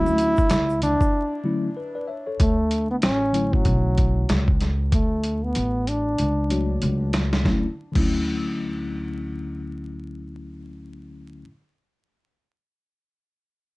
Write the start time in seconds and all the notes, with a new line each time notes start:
Already playing: D2 D3 F#3 A3 C#4 E4 F#4
0.06 high conga, shaker
0.18 closed hi-hat, high conga, shaker
0.37 kick, shaker
0.50 C#2, snare, closed hi-hat, shaker
0.70 shaker
0.82 D4, closed hi-hat, low conga, shaker
1.01 muted upright bass stroke, kick, shaker
1.44 D3 F#3 A3 C#4 E4
1.77 B4
1.95 B4 D5
2.08 C#5 E5
2.26 A4 C#5
2.40 D2 A3, kick, closed hi-hat
2.71 closed hi-hat
2.91 B3
3.02 A1 C#4, snare, closed hi-hat
3.33 D3 F#3 A3 C#4 E4, closed hi-hat
3.53 F#3, kick
3.65 B1, kick, closed hi-hat
3.98 kick, closed hi-hat
4.29 C#2, snare, closed hi-hat
4.48 kick
4.61 snare, closed hi-hat
4.92 D2 A3, kick, closed hi-hat
5.24 closed hi-hat
5.44 B3
5.55 A1, closed hi-hat
5.87 D4, closed hi-hat
6.18 C#2, closed hi-hat
6.50 F#3 A3 D4 F#4 C#5, closed hi-hat
6.82 C#2, closed hi-hat
7.13 snare, closed hi-hat
7.33 snare
7.42 D2 D3 F#3 A3, kick, snare
7.47 C#4 E4
7.92 D2 D3 F#3 A3, kick, crash
7.98 C#4 E4